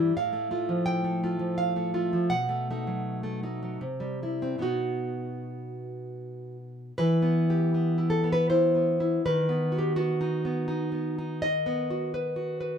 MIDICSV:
0, 0, Header, 1, 2, 480
1, 0, Start_track
1, 0, Tempo, 728155
1, 95, Time_signature, 3, 2, 24, 8
1, 2016, Tempo, 779221
1, 4896, Tempo, 738007
1, 7296, Tempo, 715990
1, 8207, End_track
2, 0, Start_track
2, 0, Title_t, "Nylon-string guitar"
2, 0, Program_c, 0, 24
2, 0, Note_on_c, 0, 43, 67
2, 0, Note_on_c, 0, 52, 51
2, 0, Note_on_c, 0, 55, 53
2, 0, Note_on_c, 0, 64, 52
2, 0, Note_on_c, 0, 76, 69
2, 69, Note_off_c, 0, 43, 0
2, 76, Note_off_c, 0, 52, 0
2, 79, Note_off_c, 0, 64, 0
2, 81, Note_off_c, 0, 76, 0
2, 102, Note_off_c, 0, 55, 0
2, 110, Note_on_c, 0, 45, 64
2, 110, Note_on_c, 0, 77, 90
2, 216, Note_on_c, 0, 57, 50
2, 329, Note_off_c, 0, 57, 0
2, 336, Note_on_c, 0, 57, 49
2, 337, Note_on_c, 0, 65, 53
2, 454, Note_on_c, 0, 53, 50
2, 558, Note_off_c, 0, 77, 0
2, 565, Note_on_c, 0, 79, 88
2, 677, Note_off_c, 0, 57, 0
2, 685, Note_on_c, 0, 57, 50
2, 807, Note_off_c, 0, 57, 0
2, 807, Note_off_c, 0, 65, 0
2, 814, Note_on_c, 0, 57, 45
2, 816, Note_on_c, 0, 65, 49
2, 910, Note_off_c, 0, 53, 0
2, 918, Note_on_c, 0, 53, 53
2, 1029, Note_off_c, 0, 79, 0
2, 1040, Note_on_c, 0, 77, 83
2, 1154, Note_off_c, 0, 57, 0
2, 1161, Note_on_c, 0, 57, 49
2, 1270, Note_off_c, 0, 57, 0
2, 1274, Note_off_c, 0, 65, 0
2, 1278, Note_on_c, 0, 57, 49
2, 1281, Note_on_c, 0, 65, 53
2, 1396, Note_off_c, 0, 53, 0
2, 1402, Note_off_c, 0, 45, 0
2, 1404, Note_on_c, 0, 53, 50
2, 1503, Note_off_c, 0, 57, 0
2, 1504, Note_off_c, 0, 65, 0
2, 1510, Note_off_c, 0, 77, 0
2, 1515, Note_on_c, 0, 78, 90
2, 1519, Note_on_c, 0, 47, 60
2, 1530, Note_off_c, 0, 53, 0
2, 1641, Note_on_c, 0, 57, 51
2, 1775, Note_off_c, 0, 57, 0
2, 1783, Note_on_c, 0, 57, 46
2, 1786, Note_on_c, 0, 63, 47
2, 1893, Note_on_c, 0, 54, 44
2, 2117, Note_off_c, 0, 57, 0
2, 2124, Note_on_c, 0, 57, 46
2, 2238, Note_off_c, 0, 57, 0
2, 2241, Note_off_c, 0, 63, 0
2, 2246, Note_on_c, 0, 57, 41
2, 2249, Note_on_c, 0, 63, 42
2, 2359, Note_off_c, 0, 54, 0
2, 2366, Note_on_c, 0, 54, 49
2, 2456, Note_off_c, 0, 47, 0
2, 2463, Note_off_c, 0, 57, 0
2, 2465, Note_off_c, 0, 63, 0
2, 2479, Note_on_c, 0, 48, 55
2, 2488, Note_off_c, 0, 54, 0
2, 2597, Note_on_c, 0, 55, 45
2, 2728, Note_off_c, 0, 55, 0
2, 2735, Note_on_c, 0, 55, 44
2, 2739, Note_on_c, 0, 64, 44
2, 2856, Note_on_c, 0, 60, 42
2, 2949, Note_off_c, 0, 78, 0
2, 2953, Note_off_c, 0, 48, 0
2, 2955, Note_on_c, 0, 47, 58
2, 2958, Note_off_c, 0, 60, 0
2, 2959, Note_off_c, 0, 55, 0
2, 2959, Note_off_c, 0, 64, 0
2, 2960, Note_on_c, 0, 59, 41
2, 2975, Note_on_c, 0, 63, 40
2, 2979, Note_on_c, 0, 66, 66
2, 4163, Note_off_c, 0, 66, 0
2, 4388, Note_off_c, 0, 47, 0
2, 4391, Note_off_c, 0, 59, 0
2, 4398, Note_off_c, 0, 63, 0
2, 4431, Note_on_c, 0, 71, 89
2, 4436, Note_on_c, 0, 52, 63
2, 4581, Note_on_c, 0, 59, 53
2, 4752, Note_on_c, 0, 67, 51
2, 4895, Note_off_c, 0, 59, 0
2, 4903, Note_on_c, 0, 59, 45
2, 5057, Note_on_c, 0, 64, 48
2, 5110, Note_off_c, 0, 71, 0
2, 5134, Note_on_c, 0, 69, 70
2, 5216, Note_off_c, 0, 59, 0
2, 5224, Note_on_c, 0, 59, 49
2, 5252, Note_off_c, 0, 69, 0
2, 5280, Note_on_c, 0, 71, 74
2, 5384, Note_off_c, 0, 64, 0
2, 5385, Note_off_c, 0, 71, 0
2, 5391, Note_on_c, 0, 64, 50
2, 5393, Note_on_c, 0, 72, 75
2, 5457, Note_off_c, 0, 67, 0
2, 5549, Note_off_c, 0, 59, 0
2, 5557, Note_on_c, 0, 59, 49
2, 5713, Note_off_c, 0, 64, 0
2, 5721, Note_on_c, 0, 64, 50
2, 5831, Note_off_c, 0, 52, 0
2, 5844, Note_off_c, 0, 72, 0
2, 5866, Note_off_c, 0, 59, 0
2, 5867, Note_off_c, 0, 64, 0
2, 5885, Note_on_c, 0, 51, 70
2, 5887, Note_on_c, 0, 71, 79
2, 6038, Note_on_c, 0, 59, 51
2, 6188, Note_on_c, 0, 66, 47
2, 6211, Note_off_c, 0, 71, 0
2, 6230, Note_on_c, 0, 67, 68
2, 6337, Note_off_c, 0, 67, 0
2, 6338, Note_off_c, 0, 66, 0
2, 6341, Note_off_c, 0, 59, 0
2, 6346, Note_on_c, 0, 66, 81
2, 6349, Note_on_c, 0, 59, 49
2, 6505, Note_on_c, 0, 63, 47
2, 6655, Note_off_c, 0, 59, 0
2, 6663, Note_on_c, 0, 59, 54
2, 6804, Note_off_c, 0, 63, 0
2, 6812, Note_on_c, 0, 63, 49
2, 6961, Note_off_c, 0, 59, 0
2, 6968, Note_on_c, 0, 59, 46
2, 7133, Note_off_c, 0, 63, 0
2, 7140, Note_on_c, 0, 63, 53
2, 7277, Note_off_c, 0, 66, 0
2, 7284, Note_off_c, 0, 51, 0
2, 7294, Note_on_c, 0, 75, 98
2, 7297, Note_off_c, 0, 59, 0
2, 7299, Note_off_c, 0, 63, 0
2, 7301, Note_on_c, 0, 51, 68
2, 7456, Note_on_c, 0, 59, 57
2, 7618, Note_on_c, 0, 66, 48
2, 7774, Note_off_c, 0, 66, 0
2, 7776, Note_on_c, 0, 71, 54
2, 7925, Note_on_c, 0, 66, 51
2, 8080, Note_off_c, 0, 71, 0
2, 8088, Note_on_c, 0, 71, 54
2, 8173, Note_off_c, 0, 59, 0
2, 8207, Note_off_c, 0, 51, 0
2, 8207, Note_off_c, 0, 66, 0
2, 8207, Note_off_c, 0, 71, 0
2, 8207, Note_off_c, 0, 75, 0
2, 8207, End_track
0, 0, End_of_file